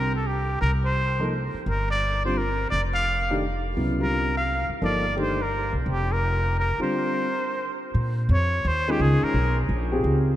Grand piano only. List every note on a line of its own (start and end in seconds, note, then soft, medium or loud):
0.00 0.10 D3 soft
0.00 0.10 G3 soft
0.00 0.10 C4 soft
0.00 0.11 F4 medium
1.20 1.30 F3 medium
1.20 1.31 A#3 medium
1.20 1.31 D#4 medium
1.20 1.31 A4 medium
2.25 2.36 D3 medium
2.25 2.36 G3 medium
2.25 2.36 C4 medium
2.25 2.36 F4 medium
3.30 3.40 D#3 medium
3.30 3.41 A3 medium
3.30 3.41 D4 medium
3.30 3.41 G4 medium
3.76 3.97 C#3 soft
3.76 3.97 F#3 soft
3.76 3.97 B3 soft
3.76 3.97 E4 medium
3.99 4.29 D3 soft
3.99 4.29 G3 soft
3.99 4.29 C4 soft
3.99 4.29 F4 medium
4.81 5.02 F3 medium
4.81 5.02 A#3 medium
4.81 5.02 D#4 medium
4.81 5.02 A4 medium
5.16 5.36 D#3 medium
5.16 5.36 A3 medium
5.16 5.37 D4 medium
5.16 5.37 G4 medium
6.79 7.23 D3 medium
6.79 7.24 G3 medium
6.79 7.24 C4 medium
6.79 7.24 F4 medium
8.88 9.32 D#3 medium
8.88 9.32 G#3 medium
8.88 9.33 C#4 medium
8.88 9.33 F4 medium
9.92 10.36 C4 medium
9.92 10.36 F4 medium
9.92 10.36 G4 medium
9.92 10.36 G#4 medium